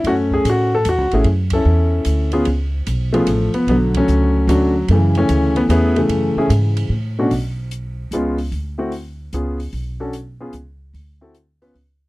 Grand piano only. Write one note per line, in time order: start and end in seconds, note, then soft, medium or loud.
0.07 0.69 A3 medium
0.07 0.69 C#4 medium
0.07 0.13 F#4 medium
0.34 0.47 G#4 medium
0.50 0.72 F#4 medium
0.75 0.86 A4 medium
0.89 1.15 F#4 medium
1.13 1.25 A3 medium
1.13 1.26 C#4 medium
1.13 1.25 E4 medium
1.13 1.25 G#4 medium
1.53 2.30 C#4 medium
1.53 2.30 E4 medium
1.53 2.30 A4 medium
2.33 2.45 B3 medium
2.33 2.45 C#4 medium
2.33 2.46 F4 medium
2.33 2.46 G#4 medium
3.13 3.64 F3 medium
3.13 3.51 A3 medium
3.13 3.26 B3 medium
3.13 3.26 C#4 medium
3.13 3.26 F4 medium
3.13 3.26 G#4 medium
3.54 3.68 B3 medium
3.69 4.32 D3 medium
3.69 3.96 F#3 medium
3.69 3.75 B3 medium
3.97 4.46 F#3 medium
3.97 4.46 A3 medium
3.97 4.48 C#4 medium
4.49 4.87 F#3 medium
4.49 4.73 A3 medium
4.49 4.73 C#4 medium
4.49 4.73 D4 medium
4.49 4.73 F#4 medium
4.91 5.54 C#3 medium
4.91 5.17 E3 medium
4.91 4.97 A3 medium
5.18 5.67 E3 medium
5.18 5.67 A3 medium
5.18 5.58 C#4 medium
5.57 5.62 B3 medium
5.70 5.94 A3 medium
5.70 5.98 B3 medium
5.70 5.94 C#4 medium
5.70 5.94 E4 medium
5.70 5.94 G#4 medium
5.96 6.88 C#3 medium
5.96 6.88 E3 medium
5.96 6.36 A3 medium
6.38 6.50 A3 medium
6.38 6.49 C#4 medium
6.38 6.50 E4 medium
6.38 6.50 G#4 medium
7.19 7.30 B2 medium
7.19 7.30 A3 soft
7.19 7.30 C#4 medium
7.19 7.31 D4 medium
7.19 7.31 F#4 medium
8.13 8.36 G#3 medium
8.13 8.36 B3 medium
8.13 8.37 C#4 medium
8.13 8.37 F4 medium
8.78 8.91 A3 medium
8.78 8.91 C4 medium
8.78 8.90 E4 medium
8.78 8.91 F#4 medium
9.34 9.57 B3 medium
9.34 9.57 C#4 soft
9.34 9.58 F4 soft
9.34 9.57 G#4 medium
10.00 10.12 C#4 medium
10.00 10.12 D4 soft
10.00 10.12 F#4 medium
10.00 10.12 A4 medium
10.40 10.52 B3 medium
10.40 10.52 C#4 soft
10.40 10.53 F4 medium
10.40 10.53 G#4 medium
11.21 11.33 C4 medium
11.21 11.33 E4 medium
11.21 11.33 F#4 medium
11.21 11.34 A4 medium
11.62 11.74 B3 medium
11.62 11.74 C#4 medium
11.62 11.74 F4 medium
11.62 11.74 B4 medium